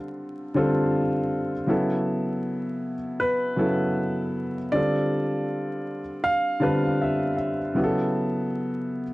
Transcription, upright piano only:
0.00 0.54 D3 medium
0.00 0.55 G3 medium
0.00 0.56 C4 medium
0.00 0.57 F4 medium
0.00 0.57 A4 medium
0.54 1.52 D3 medium
0.54 1.52 G3 medium
0.54 1.53 C4 medium
0.54 1.53 F4 medium
0.54 1.53 A4 medium
1.66 2.94 C#3 medium
1.66 2.95 F#3 medium
1.66 2.95 B3 medium
1.66 2.96 E4 medium
1.66 2.96 A4 medium
3.56 4.54 C#3 medium
3.56 4.55 F#3 medium
3.56 4.55 B3 medium
3.56 4.56 E4 medium
3.56 4.56 A4 medium
4.73 5.99 D3 medium
4.73 6.00 G3 medium
4.73 6.00 C4 medium
4.73 6.01 F4 medium
4.73 6.01 A4 medium
6.60 7.58 D3 medium
6.60 7.59 G3 medium
6.60 7.59 C4 medium
6.60 7.59 F4 medium
6.60 7.60 B4 medium
6.60 6.83 A5 medium
6.84 6.99 F5 medium
7.01 7.35 E5 medium
7.37 7.73 E5 medium
7.74 9.02 C#3 medium
7.74 9.02 F#3 medium
7.74 9.03 B3 medium
7.74 9.03 E4 medium
7.74 7.85 G4 medium
7.84 9.07 A4 medium

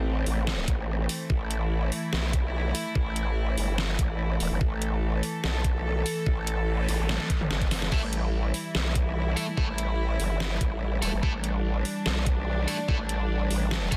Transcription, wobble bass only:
0.00 0.25 A1 loud
0.26 0.66 A1 loud
0.68 1.08 A1 loud
1.30 1.90 A1 loud
2.13 2.73 B1 loud
2.95 3.56 A1 loud
3.57 3.97 G1 loud
3.99 4.39 A1 loud
4.40 4.49 E1 loud
4.51 4.59 G1 medium
4.61 5.21 A1 loud
5.44 6.04 B1 loud
6.26 6.87 A1 loud
6.88 6.98 A1 loud
6.99 7.18 A1 loud
7.41 7.49 A1 medium
7.51 7.90 G1 medium
7.92 8.52 A1 loud
8.75 9.35 B1 loud
9.57 10.18 A1 loud
10.20 10.59 G1 loud
10.61 11.01 A1 loud
11.02 11.11 E1 loud
11.13 11.21 G1 medium
11.23 11.84 A1 loud
12.06 12.66 B1 loud
12.89 13.49 A1 loud
13.51 13.90 A1 loud
13.92 13.97 A1 loud

